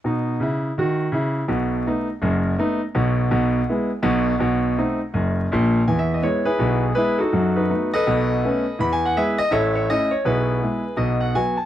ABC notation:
X:1
M:4/4
L:1/8
Q:"Swing" 1/4=164
K:E
V:1 name="Grand piano"
z8 | z8 | z8 | z8 |
(3g e d c [EGB]2 G [EGB] [DFA]- | [DFA] [DFB]2 [ABd]4- [ABd] | (3b g f [GBe] d [Ace] c d c | [EGB]4 d f g a |]
V:2 name="Grand piano" clef=bass
[B,,D]2 [C,E]2 [D,F]2 [C,E]2 | [B,,,B,,]2 [A,B,D]2 [F,,,F,,]2 [A,B,D]2 | [B,,,B,,]2 [B,,,B,,]2 [G,B,E]2 [B,,,B,,]2 | [B,,,B,,]2 [A,=CD]2 [F,,,F,,]2 [^A,,,^A,,]2 |
[E,,E,]2 [G,B,E]2 [B,,,B,,]2 [G,B,]2 | [F,,F,]2 [A,B,D]2 [B,,,B,,]2 [A,B,C]2 | [E,,E,]2 [G,B,E]2 [A,,,A,,]2 [A,CE]2 | [B,,,B,,]2 [G,B,E]2 [B,,,B,,]2 [F,B,F]2 |]